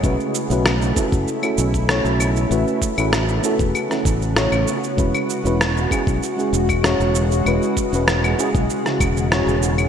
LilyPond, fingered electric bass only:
\new Staff \with { instrumentName = "Fingered electric bass" } { \clef bass \time 4/4 \key e \major \tempo 4 = 97 b,,16 r8 b,,8. r16 fis,,16 r8 b,,8. b,,8. | a,,16 r8 a,,8. r16 e,,16 r8 a,,8. a,,16 r8 | e,,16 r8 e,,8. r16 b,,16 r8 e,,8. e,,8. | e,,16 r8 e,,8. r16 b,,16 r8 e,,8. e,,8. | }